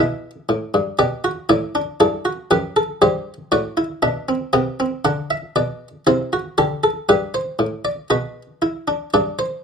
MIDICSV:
0, 0, Header, 1, 2, 480
1, 0, Start_track
1, 0, Tempo, 1015228
1, 472, Time_signature, 4, 2, 24, 8
1, 4557, End_track
2, 0, Start_track
2, 0, Title_t, "Harpsichord"
2, 0, Program_c, 0, 6
2, 0, Note_on_c, 0, 47, 66
2, 0, Note_on_c, 0, 64, 83
2, 0, Note_on_c, 0, 76, 64
2, 143, Note_off_c, 0, 47, 0
2, 232, Note_on_c, 0, 45, 60
2, 348, Note_off_c, 0, 45, 0
2, 351, Note_on_c, 0, 43, 70
2, 457, Note_off_c, 0, 64, 0
2, 457, Note_off_c, 0, 76, 0
2, 467, Note_off_c, 0, 43, 0
2, 467, Note_on_c, 0, 67, 72
2, 468, Note_on_c, 0, 47, 73
2, 468, Note_on_c, 0, 74, 60
2, 585, Note_off_c, 0, 67, 0
2, 588, Note_on_c, 0, 66, 74
2, 617, Note_off_c, 0, 47, 0
2, 617, Note_off_c, 0, 74, 0
2, 705, Note_off_c, 0, 66, 0
2, 706, Note_on_c, 0, 45, 69
2, 706, Note_on_c, 0, 64, 73
2, 706, Note_on_c, 0, 74, 80
2, 824, Note_off_c, 0, 64, 0
2, 828, Note_on_c, 0, 62, 67
2, 855, Note_off_c, 0, 45, 0
2, 855, Note_off_c, 0, 74, 0
2, 944, Note_off_c, 0, 62, 0
2, 947, Note_on_c, 0, 64, 68
2, 947, Note_on_c, 0, 69, 76
2, 948, Note_on_c, 0, 43, 66
2, 1063, Note_off_c, 0, 64, 0
2, 1065, Note_on_c, 0, 66, 67
2, 1096, Note_off_c, 0, 43, 0
2, 1096, Note_off_c, 0, 69, 0
2, 1182, Note_off_c, 0, 66, 0
2, 1186, Note_on_c, 0, 42, 63
2, 1186, Note_on_c, 0, 67, 70
2, 1186, Note_on_c, 0, 71, 82
2, 1303, Note_off_c, 0, 67, 0
2, 1307, Note_on_c, 0, 69, 69
2, 1335, Note_off_c, 0, 42, 0
2, 1335, Note_off_c, 0, 71, 0
2, 1423, Note_off_c, 0, 69, 0
2, 1427, Note_on_c, 0, 43, 71
2, 1427, Note_on_c, 0, 67, 70
2, 1427, Note_on_c, 0, 72, 80
2, 1575, Note_off_c, 0, 43, 0
2, 1576, Note_off_c, 0, 67, 0
2, 1576, Note_off_c, 0, 72, 0
2, 1664, Note_on_c, 0, 45, 66
2, 1664, Note_on_c, 0, 74, 84
2, 1665, Note_on_c, 0, 66, 67
2, 1782, Note_off_c, 0, 66, 0
2, 1784, Note_on_c, 0, 64, 65
2, 1814, Note_off_c, 0, 45, 0
2, 1814, Note_off_c, 0, 74, 0
2, 1902, Note_off_c, 0, 64, 0
2, 1903, Note_on_c, 0, 47, 63
2, 1903, Note_on_c, 0, 76, 78
2, 1904, Note_on_c, 0, 62, 69
2, 2022, Note_off_c, 0, 62, 0
2, 2026, Note_on_c, 0, 60, 65
2, 2054, Note_off_c, 0, 47, 0
2, 2054, Note_off_c, 0, 76, 0
2, 2143, Note_on_c, 0, 48, 70
2, 2143, Note_on_c, 0, 79, 82
2, 2144, Note_off_c, 0, 60, 0
2, 2144, Note_on_c, 0, 59, 62
2, 2263, Note_off_c, 0, 59, 0
2, 2269, Note_on_c, 0, 60, 67
2, 2294, Note_off_c, 0, 48, 0
2, 2294, Note_off_c, 0, 79, 0
2, 2386, Note_off_c, 0, 60, 0
2, 2386, Note_on_c, 0, 78, 85
2, 2387, Note_on_c, 0, 50, 70
2, 2387, Note_on_c, 0, 62, 72
2, 2504, Note_off_c, 0, 78, 0
2, 2508, Note_on_c, 0, 76, 81
2, 2537, Note_off_c, 0, 50, 0
2, 2626, Note_off_c, 0, 76, 0
2, 2628, Note_on_c, 0, 74, 86
2, 2629, Note_on_c, 0, 47, 71
2, 2778, Note_off_c, 0, 74, 0
2, 2779, Note_off_c, 0, 47, 0
2, 2855, Note_off_c, 0, 62, 0
2, 2869, Note_on_c, 0, 64, 69
2, 2869, Note_on_c, 0, 72, 81
2, 2870, Note_on_c, 0, 48, 65
2, 2987, Note_off_c, 0, 64, 0
2, 2993, Note_on_c, 0, 66, 63
2, 3019, Note_off_c, 0, 72, 0
2, 3020, Note_off_c, 0, 48, 0
2, 3109, Note_off_c, 0, 66, 0
2, 3111, Note_on_c, 0, 67, 69
2, 3111, Note_on_c, 0, 69, 69
2, 3112, Note_on_c, 0, 50, 69
2, 3226, Note_off_c, 0, 69, 0
2, 3228, Note_off_c, 0, 67, 0
2, 3232, Note_on_c, 0, 69, 69
2, 3260, Note_off_c, 0, 50, 0
2, 3348, Note_off_c, 0, 69, 0
2, 3352, Note_on_c, 0, 43, 69
2, 3352, Note_on_c, 0, 71, 78
2, 3353, Note_on_c, 0, 67, 64
2, 3468, Note_off_c, 0, 71, 0
2, 3472, Note_on_c, 0, 72, 74
2, 3500, Note_off_c, 0, 43, 0
2, 3589, Note_on_c, 0, 45, 69
2, 3620, Note_off_c, 0, 72, 0
2, 3710, Note_on_c, 0, 74, 73
2, 3739, Note_off_c, 0, 45, 0
2, 3818, Note_off_c, 0, 67, 0
2, 3827, Note_off_c, 0, 74, 0
2, 3830, Note_on_c, 0, 66, 62
2, 3832, Note_on_c, 0, 71, 72
2, 3833, Note_on_c, 0, 47, 64
2, 3980, Note_off_c, 0, 66, 0
2, 4076, Note_on_c, 0, 64, 58
2, 4191, Note_off_c, 0, 64, 0
2, 4197, Note_on_c, 0, 62, 55
2, 4300, Note_off_c, 0, 47, 0
2, 4300, Note_off_c, 0, 71, 0
2, 4312, Note_off_c, 0, 62, 0
2, 4320, Note_on_c, 0, 74, 72
2, 4321, Note_on_c, 0, 43, 68
2, 4321, Note_on_c, 0, 62, 61
2, 4434, Note_off_c, 0, 74, 0
2, 4439, Note_on_c, 0, 72, 67
2, 4468, Note_off_c, 0, 43, 0
2, 4468, Note_off_c, 0, 62, 0
2, 4553, Note_off_c, 0, 72, 0
2, 4557, End_track
0, 0, End_of_file